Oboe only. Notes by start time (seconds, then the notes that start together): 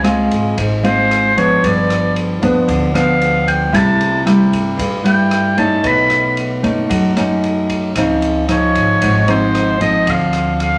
0.86 C5
1.37 C#5
1.65 D5
2.95 F5
3.48 G5
3.75 A5
5.05 G5
5.59 A5
5.87 B5
8.52 C#5
9.30 C5
9.82 D#5
10.10 F5
10.61 F5